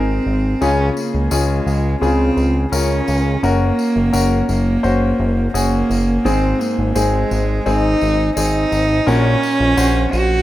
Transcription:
Already playing: G#1 G#2 C4 D#4 G#4 A#4
0.26 G#1
0.61 C#2 C#3 C#4 F4 G#4, tambourine
0.97 A#3, tambourine
1.14 C#2
1.31 C#2 G#3 C#4 F4 G#4, tambourine
1.66 C#2, tambourine
2.02 C#2 C#3 C4 F4 G#4, tambourine
2.37 C#2, tambourine
2.72 C#2 C#4 F4 A#4, tambourine
3.08 C#2, tambourine
3.43 F#1 A#3 C#4 F#4 A#4, tambourine
3.79 tambourine
3.96 F#1
4.13 F#1 C#4 F#4 A#4, tambourine
4.48 F#1 A#3, tambourine
4.83 F#1 C#4 F#4 C5, tambourine
5.20 F#1
5.54 F#1 A#3 C#4 F#4 G#4, tambourine
5.90 F#1, tambourine
6.25 G#1 G#2 C4 D#4 G#4, tambourine
6.59 A#3, tambourine
6.78 G#1
6.95 G#1 G#3 C4 D#4 G#4, tambourine
7.31 G#1, tambourine
7.66 G#1 C4 D#4 G#4, tambourine
8.01 G#1, tambourine
8.37 G#1 C4 D#4 G#4, tambourine
8.72 G#1, tambourine
9.07 A#1 A#2 C#4 F#4 A#4, tambourine
9.43 tambourine
9.60 A#1
9.77 A#1 C#4 F#4 C5, tambourine
10.13 A#1 F#4, tambourine

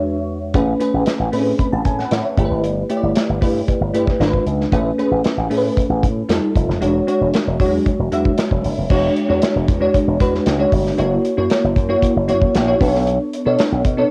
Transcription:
Already playing: E2 G#3 D4 F#4 B4 C#5 E5
0.54 A1 A3 C#4 G#4 B4, kick, closed hi-hat
0.80 A3 C#4 G#4 B4, closed hi-hat
0.94 A1
1.06 snare, closed hi-hat
1.19 A1
1.32 A2 A3 C4 G#4 B4, open hi-hat
1.39 C#4
1.59 B5, kick, closed hi-hat
1.72 A1 A5
1.85 A2 G#5, kick, closed hi-hat
1.99 F#5, snare
2.11 A2 E5, snare, closed hi-hat
2.24 C#5
2.37 G1 A3 E4 G4 A4, kick, closed hi-hat
2.45 B4
2.51 G#1
2.64 G1, closed hi-hat
2.89 A3 E4 G4 C#5, closed hi-hat
2.97 D5
3.03 G1
3.15 snare, closed hi-hat
3.29 G1
3.41 G2 A3 E4 G4 B4, kick, open hi-hat
3.68 kick, closed hi-hat
3.81 G1
3.93 G2 A3 E4 G4 B4, closed hi-hat
4.07 kick, snare
4.19 G#1 G#3 D4 F4 A#4, snare, closed hi-hat
4.27 B4
4.33 kick
4.46 C#2, closed hi-hat
4.61 snare
4.72 A1 A3 C#4 G#4 B4, kick, closed hi-hat
4.98 A3 C#4 G#4 B4, closed hi-hat
5.11 A1
5.24 snare, closed hi-hat
5.37 A1
5.50 A2 A3 C#4 G#4 A4, open hi-hat
5.57 B4
5.77 kick, closed hi-hat
5.89 A1
6.03 A2, kick, closed hi-hat
6.29 F2 G3 D#4 F4 A4, snare, closed hi-hat
6.56 F1, kick, closed hi-hat
6.68 F1, snare
6.81 E1 G#3 D4 F#4 C#5, closed hi-hat
7.07 G#3 D4 F#4 C#5, closed hi-hat
7.21 E1
7.34 snare, closed hi-hat
7.47 E1
7.59 E2 F#3 D4 F#4 C#5, kick, open hi-hat
7.66 G#3
7.86 kick, closed hi-hat
7.99 E1
8.12 E2 G#3 D4 F#4 E5, closed hi-hat
8.25 kick
8.38 snare, closed hi-hat
8.51 E1, kick
8.64 F#1, open hi-hat
8.78 F1
8.90 E1 G#3 D4 F#4 C#5, kick, crash
9.16 closed hi-hat
9.28 E2 G#3 D4 F#4 C#5
9.42 snare, closed hi-hat
9.56 E1
9.68 E2, kick, closed hi-hat
9.81 G#3 D4 F#4 C#5
9.94 kick, closed hi-hat
10.08 E1
10.20 E2 G#3 D4 F#4 B4, kick, closed hi-hat
10.35 snare
10.46 C#2, snare, closed hi-hat
10.59 G#3 D4 F#4 C#5
10.72 G1, kick, open hi-hat
10.87 snare
10.98 F#1 A#3 E4 F#4 C#5, closed hi-hat
11.25 closed hi-hat
11.37 F#2 A#3 E4 F#4 C#5
11.50 snare, closed hi-hat
11.64 F#1
11.76 F#2, kick, closed hi-hat
11.89 A#3 E4 F#4 C#5
12.02 kick, closed hi-hat
12.16 F#1
12.28 F#2 A#3 E4 F#4 C#5, closed hi-hat
12.42 kick
12.55 A#1, snare, closed hi-hat
12.67 A#3 E4 F#4 C#5
12.80 B1 B3 D4 A4 B4, kick, open hi-hat
12.88 C#5
12.95 snare
13.07 closed hi-hat
13.33 closed hi-hat
13.45 B2 B3 D4 A4 C#5
13.59 snare, closed hi-hat
13.72 B1
13.85 B2, kick, closed hi-hat
13.97 B3 D4 A4 C#5

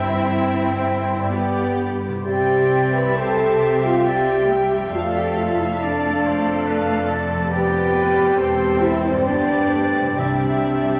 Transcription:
Already playing: G1 G2 C4 E4 G4 C5 E5 G5
1.15 G2
1.19 D4
1.24 G4
1.28 B4 D5 G5
1.33 B3 G4 B4
2.08 C3
2.13 E4
2.17 G4
2.22 C3 G4 C5 D5 E5
2.26 C2 C4 G4 E5 G5
2.94 B4 B5
3.16 C4 A4 C5 A5
3.85 F4 F5
4.06 C4 G4 D5 G5
4.50 G3 E5
4.76 F2
4.80 D4
4.85 A4
4.89 D5
4.93 F1 F2 A3 F4 A4 D5 F5 A5
5.15 G4 G5
5.38 F4 F5
5.60 E4 E5
5.81 A3 D4 A4 D5
6.26 C5
6.68 B4 F5
7.10 A4 D5
7.34 F2
7.39 D4
7.44 G4
7.48 B4
7.52 B3 G4 D5 G5
7.94 B4
8.19 E2
8.24 C4
8.28 G4
8.33 C5
8.37 E1 E2 C4 A4 C5
8.80 E4 E5
9.04 G2 C4 C5
9.12 D4
9.17 G4
9.21 B4
9.26 G1 G2 B3 D4 G4 B4 D5
9.72 A3
10.01 C3
10.05 E4
10.10 G4
10.14 G3 C5 E5
10.18 C2 C3 D4 G4 D5 E5

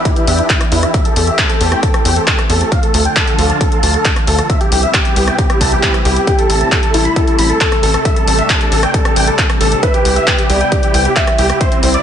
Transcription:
Already playing: E3 B3 D4 G4
0.05 E4, kick, closed hi-hat
0.16 E4, closed hi-hat
0.27 E2 E5, open hi-hat
0.39 E4, closed hi-hat
0.50 E4, kick, clap, closed hi-hat
0.61 cross-stick, closed hi-hat
0.72 E2 E4, open hi-hat
0.83 E4, cross-stick, closed hi-hat
0.94 A3 C4 G4 E5, kick, closed hi-hat
1.05 A4, closed hi-hat
1.16 E2 A4, open hi-hat
1.27 E5, closed hi-hat
1.39 A4, kick, clap, closed hi-hat
1.50 A4, closed hi-hat
1.61 E2 A4, open hi-hat
1.72 G5, cross-stick, closed hi-hat
1.83 A4, kick, closed hi-hat
1.94 A4, cross-stick, closed hi-hat
2.05 E2 G5, open hi-hat
2.16 A4, closed hi-hat
2.27 A4, kick, clap, closed hi-hat
2.39 cross-stick, closed hi-hat
2.50 E2 A4, open hi-hat
2.61 A4, closed hi-hat
2.72 D3 F3 F4 F5, kick, closed hi-hat
2.83 A4, closed hi-hat
2.94 D2 A4, open hi-hat
3.05 G5, closed hi-hat
3.16 A4, kick, clap, closed hi-hat
3.27 A4, closed hi-hat
3.39 D2 A4, open hi-hat
3.50 A5, closed hi-hat
3.61 A4, kick, closed hi-hat
3.72 A4, closed hi-hat
3.83 D2 A5, open hi-hat
3.94 A4, closed hi-hat
4.05 A4, kick, clap, closed hi-hat
4.16 cross-stick, closed hi-hat
4.27 D2 A4, open hi-hat
4.39 A4, cross-stick, closed hi-hat
4.50 C3 G3 B3 E4 E5, kick, closed hi-hat
4.61 G4, closed hi-hat
4.72 C2 G4, open hi-hat
4.83 E5, closed hi-hat
4.94 G4, kick, clap, closed hi-hat
5.05 G4, closed hi-hat
5.16 C2 G4, open hi-hat
5.27 G5, cross-stick, closed hi-hat
5.39 G4, kick, closed hi-hat
5.50 G4, cross-stick, closed hi-hat
5.61 C2 A5, kick, open hi-hat
5.72 G4, closed hi-hat
5.83 G4, kick, clap, closed hi-hat
5.94 cross-stick, closed hi-hat
6.05 C2 G4, open hi-hat
6.16 G4, closed hi-hat
6.27 G3 A3 G4 G5, kick, closed hi-hat
6.38 A4, closed hi-hat
6.50 A1 A4, open hi-hat
6.61 A5, closed hi-hat
6.72 A4, kick, clap, closed hi-hat
6.83 A4, closed hi-hat
6.94 A1 E4 A4, open hi-hat
7.05 B5, closed hi-hat
7.16 A4, kick, closed hi-hat
7.27 A4, closed hi-hat
7.38 A1 B5, open hi-hat
7.50 A4, closed hi-hat
7.61 A4, kick, clap, closed hi-hat
7.72 cross-stick, closed hi-hat
7.83 A1 A4, open hi-hat
7.94 A4, cross-stick, closed hi-hat
8.05 D4 E5, kick, closed hi-hat
8.16 A4, closed hi-hat
8.27 A1 A4, open hi-hat
8.38 E5, closed hi-hat
8.50 A4, kick, clap, closed hi-hat
8.61 A4, closed hi-hat
8.72 A1 A4, open hi-hat
8.83 G5, cross-stick, closed hi-hat
8.94 A4, kick, closed hi-hat
9.05 A4, cross-stick, closed hi-hat
9.16 A1 G5, open hi-hat
9.27 A4, closed hi-hat
9.38 A4, kick, clap, closed hi-hat
9.50 cross-stick, closed hi-hat
9.61 A1 A4, open hi-hat
9.72 A4, closed hi-hat
9.83 B3 E4 B4 E5, kick, closed hi-hat
9.94 G4, closed hi-hat
10.05 C2 G4, open hi-hat
10.16 E5, closed hi-hat
10.27 G4, kick, clap, closed hi-hat
10.39 G4, closed hi-hat
10.50 C2 G4 D5, open hi-hat
10.61 G5, closed hi-hat
10.72 G4, kick, closed hi-hat
10.83 G4, closed hi-hat
10.94 C2 G5, open hi-hat
11.05 G4, closed hi-hat
11.16 G4 E5, kick, clap, closed hi-hat
11.27 cross-stick, closed hi-hat
11.38 C2 G4, open hi-hat
11.50 G4, cross-stick, closed hi-hat
11.61 C4 C5, kick, closed hi-hat
11.72 C4, closed hi-hat
11.83 C2 C4, open hi-hat
11.94 D5, closed hi-hat

